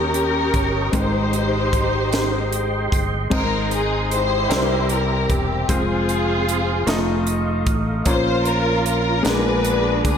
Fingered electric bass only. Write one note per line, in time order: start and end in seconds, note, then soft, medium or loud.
0.00 0.50 D#2 medium
0.54 0.91 G1 medium
0.94 2.88 G#1 medium
2.92 3.29 G1 medium
3.31 4.46 G#1 medium
4.50 5.26 C2 medium
5.30 5.66 E1 medium
5.69 6.84 F1 medium
6.87 7.63 F1 medium
7.67 8.03 A1 medium
8.06 9.21 A#1 loud
9.25 10.01 A#1 medium
10.05 10.18 D2 medium